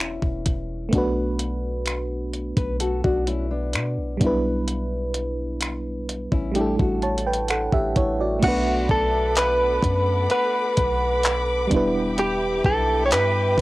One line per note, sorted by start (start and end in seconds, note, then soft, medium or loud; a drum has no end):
0.00 0.18 E1 loud
0.00 0.43 G3 medium
0.00 0.41 B3 medium
0.00 0.89 C#4 medium
0.00 0.42 D4 medium
0.00 0.43 E4 medium
0.00 0.89 E4 medium
0.00 0.44 B4 medium
0.00 finger snap loud
0.22 0.45 E1 loud
0.22 kick medium
0.46 0.91 E1 loud
0.46 kick loud
0.46 closed hi-hat medium
0.89 4.15 A3 medium
0.89 4.16 B3 medium
0.89 closed hi-hat medium
0.93 2.53 B1 loud
0.93 4.17 D4 medium
0.93 4.18 F#4 medium
0.93 kick loud
0.98 4.19 B4 medium
1.39 closed hi-hat medium
1.86 finger snap medium
1.86 closed hi-hat medium
2.34 closed hi-hat soft
2.57 3.02 B1 medium
2.57 2.79 B4 medium
2.57 kick medium
2.57 closed hi-hat medium
2.80 3.03 F#4 medium
2.80 3.03 A4 medium
2.80 closed hi-hat medium
3.04 3.76 B1 loud
3.04 3.26 D4 medium
3.04 3.26 F#4 medium
3.04 kick medium
3.27 3.50 C#4 medium
3.27 3.50 E4 medium
3.27 closed hi-hat medium
3.51 4.18 B3 medium
3.51 4.18 D4 medium
3.73 3.99 B2 medium
3.73 finger snap loud
3.73 closed hi-hat medium
3.97 4.20 B1 loud
4.17 6.28 B1 loud
4.17 6.50 G3 medium
4.17 6.51 B3 medium
4.17 kick loud
4.17 closed hi-hat medium
4.22 6.52 D4 medium
4.22 6.53 E4 medium
4.26 6.54 B4 medium
4.68 closed hi-hat medium
5.14 closed hi-hat medium
5.61 finger snap loud
5.61 closed hi-hat medium
6.09 closed hi-hat medium
6.32 6.77 A1 medium
6.32 6.55 C#4 medium
6.32 6.54 E4 medium
6.32 kick medium
6.51 8.37 G3 medium
6.51 8.38 A3 medium
6.51 6.78 G4 medium
6.51 closed hi-hat medium
6.56 8.39 D4 medium
6.56 6.78 E4 medium
6.56 7.03 E4 medium
6.61 7.04 A4 medium
6.79 7.69 A1 loud
6.79 8.16 F#4 medium
6.79 8.15 A4 medium
6.79 kick medium
7.02 7.25 C#5 medium
7.02 7.25 A5 medium
7.02 closed hi-hat soft
7.18 closed hi-hat medium
7.26 7.49 B4 medium
7.26 7.48 G5 medium
7.33 closed hi-hat medium
7.48 7.72 A4 medium
7.48 7.72 F#5 medium
7.48 finger snap loud
7.48 closed hi-hat medium
7.72 7.95 A1 loud
7.72 7.96 G4 medium
7.72 7.95 E5 medium
7.72 kick medium
7.96 8.41 A1 loud
7.96 8.19 E4 medium
7.96 8.19 C#5 medium
7.96 kick loud
7.96 closed hi-hat medium
8.20 8.45 F#4 medium
8.20 8.64 D5 medium
8.39 8.88 B1 loud
8.39 11.65 A3 medium
8.39 11.66 B3 medium
8.39 11.68 A4 medium
8.39 11.13 E5 medium
8.39 11.68 F#5 medium
8.39 13.61 B5 medium
8.39 13.61 D6 medium
8.39 kick loud
8.39 closed hi-hat medium
8.39 crash medium
8.44 11.67 D4 medium
8.44 8.90 F#4 medium
8.44 11.69 F#4 medium
8.48 11.70 B4 medium
8.89 9.80 B1 loud
8.89 9.37 A4 loud
8.89 kick loud
9.36 10.30 B4 loud
9.36 clap loud
9.36 closed hi-hat medium
9.83 10.28 F#2 loud
9.83 kick medium
9.83 closed hi-hat medium
10.30 11.68 B4 loud
10.30 12.14 F#5 medium
10.30 closed hi-hat medium
10.77 11.67 B1 loud
10.77 kick loud
10.77 closed hi-hat medium
11.23 clap loud
11.23 closed hi-hat medium
11.67 12.61 E1 loud
11.67 13.61 G3 medium
11.67 13.61 B3 medium
11.67 13.61 G4 medium
11.67 13.61 E5 medium
11.67 kick loud
11.67 closed hi-hat medium
11.72 13.61 D4 medium
11.72 13.61 E4 medium
11.76 13.61 B4 medium
12.18 12.62 G4 medium
12.18 closed hi-hat medium
12.64 13.13 B1 loud
12.64 13.05 A4 loud
12.64 kick loud
13.06 13.12 C#5 medium
13.11 13.56 G2 loud
13.11 13.61 B4 loud
13.11 clap loud
13.11 closed hi-hat medium
13.58 13.61 E1 loud
13.58 kick loud